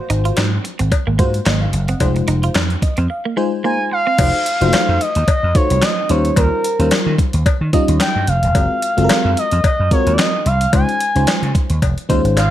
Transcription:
Already playing: A#3 F4 F#4 C5
0.10 G#1 D#4, closed hi-hat
0.25 F4, closed hi-hat
0.37 G#2 D#4, snare, clap, closed hi-hat, cowbell
0.64 muted clean electric guitar stroke, closed hi-hat
0.79 G#1 C4, closed hi-hat
0.92 muted clean electric guitar stroke, kick, closed hi-hat, cowbell
1.07 G#1 A#3
1.19 G#2 G#3 A#3 F4 F#4 C5, kick, closed hi-hat
1.34 closed hi-hat
1.46 G#1 A#3 C5 D#5, snare, clap, closed hi-hat, cowbell
1.61 F5
1.73 F#1, muted clean electric guitar stroke, closed hi-hat
1.88 C4 D#5 F#5, closed hi-hat
2.00 F1 G#3 D#4 F4 C5, kick, closed hi-hat, cowbell
2.16 muted clean electric guitar stroke, closed hi-hat
2.28 F1 D#4, closed hi-hat
2.43 F4, closed hi-hat
2.54 F2 D#4, snare, clap, closed hi-hat, cowbell
2.70 closed hi-hat
2.82 D#5, muted clean electric guitar stroke, kick, closed hi-hat
2.97 F2 C4, closed hi-hat
3.10 F5, muted clean electric guitar stroke
3.25 A#3
3.37 G#3 D#4 F4 C5 G#5
3.64 G#3 A#3 D#4 F4 C5 G#5 A#5
3.91 F5 C6, muted clean electric guitar stroke
4.07 C4
4.18 F1 A3 D#4 F4 F#4 C5, kick, closed hi-hat, crash, cowbell
4.46 closed hi-hat
4.61 F1 F#3 D#4 F4 F#4 C5, closed hi-hat
4.67 A3
4.73 muted slap bass stroke, snare, clap, closed hi-hat, cowbell
4.89 F2
5.01 D#5, closed hi-hat
5.15 D#2, closed hi-hat
5.28 D#5, muted slap bass stroke, kick, closed hi-hat, cowbell
5.43 F2
5.55 A3 D#4 F4 F#4 C5 C#5, kick, closed hi-hat
5.70 C2, closed hi-hat
5.82 D#5, snare, clap, closed hi-hat, cowbell
6.09 D#2 G3 C#4 D#4 F4 C5 C#5, closed hi-hat
6.25 closed hi-hat
6.36 D#2 A#4, kick, closed hi-hat, cowbell
6.64 closed hi-hat
6.79 D#2 G3 C#4 D#4 F4 C5, closed hi-hat
6.91 muted slap bass stroke, snare, clap, closed hi-hat, cowbell
7.06 D#3
7.18 kick, closed hi-hat
7.33 D#2, closed hi-hat
7.46 kick, closed hi-hat, cowbell
7.61 D#3
7.73 G3 C#4 D#4 F4 D#5, kick, closed hi-hat
7.88 D#2, closed hi-hat
8.01 G5, snare, clap, closed hi-hat, cowbell
8.16 G2
8.27 F1 F5, closed hi-hat
8.43 D#1, closed hi-hat
8.55 F#1 G#3 C4 F4 F#4 A#4, kick, closed hi-hat, cowbell
8.82 closed hi-hat
8.97 F#1 G#3 C4 F4 F#4 A4, closed hi-hat
9.04 A#4
9.09 muted slap bass stroke, snare, clap, closed hi-hat, cowbell
9.25 F#2
9.37 D#5, closed hi-hat
9.51 F2, closed hi-hat
9.64 D#5, muted slap bass stroke, kick, closed hi-hat, cowbell
9.80 F#2
9.91 G#3 C4 F4 F#4 A#4 C#5, kick, closed hi-hat
10.07 D#2, closed hi-hat
10.13 D5
10.19 D#5, snare, clap, closed hi-hat, cowbell
10.46 C2 F5, closed hi-hat
10.61 closed hi-hat
10.73 C#2 G#3 C#4 D#4 F4 C5 G#5, kick, closed hi-hat, cowbell
10.89 closed hi-hat
11.01 closed hi-hat
11.15 C#2 G#3 C#4 D#4 F4 C5, closed hi-hat
11.27 muted slap bass stroke, snare, clap, closed hi-hat, cowbell
11.43 C#3, closed hi-hat
11.55 kick, closed hi-hat
11.70 D#2, closed hi-hat
11.82 F1, kick, closed hi-hat, cowbell
11.98 closed hi-hat
12.09 D#2 G#3 C#4 D#4 F4 C5, kick, closed hi-hat
12.24 G#1, closed hi-hat
12.36 G#1 F5, clap, closed hi-hat, cowbell

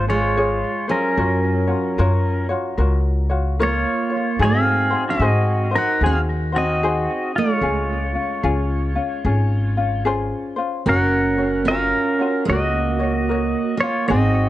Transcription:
Already playing: G#1
0.08 G#3 F4 G#4 C#5
0.37 F4 G#4 C#5
0.88 F#3 C#4 F4 G#4 A#4 C5
1.17 F#2 F4 F#4 A#4 C#5
1.67 F4 F#4 C#5
1.98 F#2 F4 F#4 A#4 C#5
2.49 F4 F#4 C#5
2.77 C#2 F4 F#4 A#4 C#5
3.30 F4 F#4 C#5
3.59 A#3 F4 A#4 C#5
3.64 F4
4.10 F4 C#5
4.39 G#2 D#4 F#4 G#4 C5
4.43 C4 F5
4.90 D#4 F#4 C5
5.09 C4 F#4 E5
5.20 G#2 D#4 F#4 G#4 C5
5.27 D#5
5.71 D#4 F#4 C5
5.75 D#4 A#4 F#5
6.01 D#2 D#4 F#4 G#4 C5
6.06 C4 F5
6.52 C4 D#4 F#4 C5
6.58 D#5
6.83 D#4 F#4 G#4 C5
7.35 G#3 D#4 F4 C#5
7.61 C#2 C#4 F4 G#4
8.15 C#4 F4
8.43 C#2 C#4 F4 G#4
8.95 C#4 F4
9.25 G#1 C#4 F4 G#4
9.77 C#4 F4
10.05 C#4 F4 G#4 C5
10.56 C#4 F4 C5
10.86 F#1 C#4 F#4 A#4 C#5 F#5
11.38 F#4 C#5
11.65 C#4 F4 F#4 A#4 F5
11.70 A#4 C#5
12.19 F4 F#4 C#5
12.45 C#2 A#3 F#4 A#4
12.49 F#4 C#5 D#5
12.99 F#4 C#5
13.29 F#4 A#4 C#5
13.77 A#3 C#5
13.83 F4
14.08 G#1 C4 D#4 F#4 G#4 C5 D#5
14.12 F#4

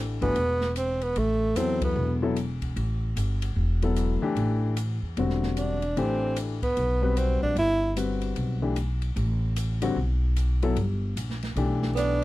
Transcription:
Already playing: A1 E3 A3 D4 G4
0.21 G1 E3 A3 B3 D4 F#4, kick, ride
0.36 E1, ride
0.61 snare
0.76 C4, hi-hat pedal, ride
1.01 B3, ride
1.16 A1 A3, ride
1.56 E2 F#3 B3 C4 E4 A4, hi-hat pedal, ride
1.82 B3, kick, ride
1.96 E1
2.22 F#3 B3 E4 A4
2.36 hi-hat pedal, ride
2.61 kick, ride
2.76 A1, ride
3.16 G1, hi-hat pedal, ride
3.42 ride
3.56 E1
3.82 F#3 B3 E4 A4, ride
3.96 hi-hat pedal, ride
4.22 E3 A3 D4 G4
4.35 A1, ride
4.77 hi-hat pedal, ride
5.02 E2
5.17 E1 D3 G3 C4 F#4, ride
5.30 snare
5.43 snare
5.57 D4, hi-hat pedal, ride
5.82 ride
5.97 A1 E3 A3 C4 D4 G4, ride
6.36 hi-hat pedal, ride
6.62 B3, kick, ride
6.77 B1, ride
7.02 G3 C4 F#4 B4
7.17 C4, hi-hat pedal, ride
7.42 A#1 D4
7.56 G1 E4, ride
7.96 G3 C4 F#4 B4, hi-hat pedal, ride
8.21 ride
8.36 B1, ride
8.62 E3 A3 D4 G4
8.76 hi-hat pedal, ride
9.02 ride
9.16 A1, ride
9.56 hi-hat pedal, ride
9.82 D3 G3 C4 F#4, ride
9.96 B1
10.36 hi-hat pedal, ride
10.62 F#3 B3 E4 A4, ride
10.76 G1, ride
11.16 A#1, hi-hat pedal, ride
11.30 snare
11.43 snare, ride
11.56 B1 E3 A3 D4 G4, ride
11.82 snare
11.95 B3 D4, hi-hat pedal, ride

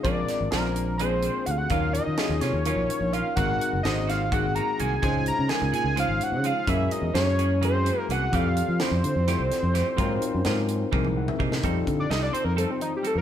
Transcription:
0.03 A#1 F3 G#3 A#3 C4 D4 F4 G#4 A#4 D5, kick, closed hi-hat
0.28 snare, closed hi-hat
0.41 G#1
0.51 A#1 F3 G#3 A#3 C4 D4 F4 G#4 A#4 C5, snare, closed hi-hat
0.76 closed hi-hat
0.98 F3 G#3 A#3 D4 F4 G#4 C5, closed hi-hat
1.02 C4
1.23 A#3 D4 G#4, closed hi-hat
1.46 D2 F#5, closed hi-hat
1.51 F5
1.58 F#5
1.70 D#2 F#3 A#3 C#4 D#4 F4 A#4 F5, kick, closed hi-hat
1.93 D#5, closed hi-hat
2.07 D#3
2.18 F#3 A#3 C#4 D#4 F4 G#4, snare, closed hi-hat
2.29 D#2
2.41 C3 A#3 C#4 F4 C#5, snare, closed hi-hat
2.53 D#2
2.65 F#3 A#3 C#4 D#4 F4 A#4, closed hi-hat
2.76 A#1
2.89 muted fingered electric bass stroke, closed hi-hat
3.01 A#1
3.13 F#3 A#3 C#4 F4 F5, closed hi-hat
3.36 G#1 D#3 G#3 A#3 C4 D#4 F#4 A#4 F#5, kick, closed hi-hat
3.61 closed hi-hat
3.73 F#1
3.83 G#1 D#3 G#3 A#3 C4 D#4 F#4 C5 D#5, snare, closed hi-hat
4.07 A#3 C4 F#4 F5, snare, closed hi-hat
4.32 D#3 G#3 A#3 C4 D#4 F#4 G#4 F#5, kick, closed hi-hat
4.55 A#3 C4 F#4 A#5, closed hi-hat
4.79 C2 D#3 A#3 C4 F#4 G#5, closed hi-hat
5.02 C#2 F3 G#3 C4 C#4 D#4 F4 G#4 C5 G#5, kick, closed hi-hat
5.26 A#5, closed hi-hat
5.39 C#3
5.48 F3 G#3 C4 C#4 D#4 F4 G#4 A#4 G#5, snare, closed hi-hat
5.62 C#2
5.72 A#2 G#3 C4 G#4 G#5, closed hi-hat
5.84 C#2
5.96 F3 G#3 C4 C#4 D#4 F4 G#4 C5 F5, closed hi-hat
6.08 G#1
6.20 F#5, muted fingered electric bass stroke, closed hi-hat
6.32 C#3
6.44 F3 G#3 C4 G#4 F5, closed hi-hat
6.67 F#2 E3 G#3 A#3 C#4 E4 F#4 G#4 A#4 E5, kick, closed hi-hat
6.91 D#5, closed hi-hat
7.02 E2
7.14 F#2 E3 G#3 A#3 C#4 E4 F#4 G#4 C#5, snare, closed hi-hat
7.39 A#3 C#4 G#4, closed hi-hat
7.61 E3 G#3 A#3 C#4 E4 F#4 G#4 C5, closed hi-hat
7.85 A#3 C#4 G#4, closed hi-hat
8.00 A#4
8.09 C2 E3 A#3 C#4 G#4 F#5, closed hi-hat
8.32 F2 E3 G3 A3 C4 F4 G4 F5, kick, closed hi-hat
8.37 A4
8.57 closed hi-hat
8.68 F3
8.80 E3 G3 A3 C4 E4 F4 G4 C5, snare, closed hi-hat
8.91 F2
9.04 D3, closed hi-hat
9.16 F2
9.28 E3 G3 A3 C4 E4 F4 G4 A4, snare, closed hi-hat
9.39 C2
9.52 muted fingered electric bass stroke, snare, closed hi-hat
9.63 F2
9.74 E3 A3 C4 G4, snare, closed hi-hat
9.97 G#2 F#3 A#3 C4 D#4 F4 A#4, kick, closed hi-hat
10.22 closed hi-hat
10.35 F#2
10.45 G#2 F#3 A#3 C4 D#4 F4 A#4, snare, closed hi-hat
10.69 closed hi-hat
10.92 C2 E3 G#3 A#3 C4 D#4 E4 G#4 A#4, kick, high tom
11.04 high tom
11.17 F#5
11.28 E5, mid tom
11.39 C3 E3 A#3 D#4 G#4 D#5, kick
11.52 snare
11.63 F2 G3 C4 D#4 F4 A4, kick, closed hi-hat
11.87 D3, kick, closed hi-hat
12.00 D5
12.10 C2 G3 C4 D#4 F4 A4 D#5, snare, closed hi-hat
12.23 D5
12.33 C4 D#4 A4 C5, closed hi-hat
12.45 F2 A#4
12.56 G3 C4 D#4 F4 A4 C5, closed hi-hat
12.71 C4
12.81 D#4, closed hi-hat
12.97 G4
13.03 G3 C4 D#4 A4, closed hi-hat
13.07 A4
13.15 F2 A#4

